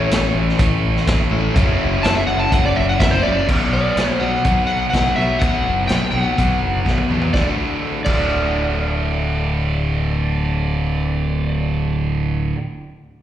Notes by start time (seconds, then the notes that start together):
Already playing: A2 E3 A3 C#4 E4 A4 C#5
0.11 A1, snare, closed hi-hat
0.35 A1
0.49 snare
0.58 A1 A2 E3 A3, kick, closed hi-hat
0.83 A1
0.96 snare
1.07 A1, kick, snare, closed hi-hat
1.31 A1 A2 E3 A3 C#4 E4 A4
1.54 F#1 F#2 C#3 F#3 A#3 C#4 E4, kick, closed hi-hat
1.79 F#1
2.03 F#1 A5, snare, closed hi-hat
2.15 E5
2.27 F#1 F#5
2.39 A5
2.51 F#1 F#2 C#3 F#3 F#5, kick, closed hi-hat
2.66 D5
2.76 F#1 E5
2.89 F#5
3.00 F#1 E5, kick, snare, closed hi-hat
3.11 C5
3.23 F#1 C#3 F#3 A#3 C#4 E4 D5
3.27 F#2
3.48 B1 B2 F#3 B3, kick, crash
3.72 B1 D5
3.96 B1 B2 F#3 B3, snare, closed hi-hat
4.20 B2 F#3 B3 F#5
4.44 B1 B2 F#3 B3, kick, closed hi-hat
4.67 F#5
4.90 B1 B2 F#3 F#5, kick, closed hi-hat
4.95 B3, snare
5.16 B1 B2 F#3 B3 E5
5.39 B1 B2 F#3 B3 F#5, kick, closed hi-hat
5.66 F#1
5.87 B1 B2 F#3 G5, snare, closed hi-hat
5.92 B3
6.11 B1 B2 F#3 F#5
6.15 B3
6.37 B1 B2 F#3 B3, kick, closed hi-hat
6.62 F#1
6.85 B1 B2 F#3 B3, kick, snare
6.98 high tom
7.09 E2 B2 F#3 B3, mid tom
7.22 floor tom
7.32 D1 D2 A2 D3 A3 D5, kick, snare
7.37 F#4
8.05 D1 D2 A2 D3 A3 D5, kick, crash
8.09 F#4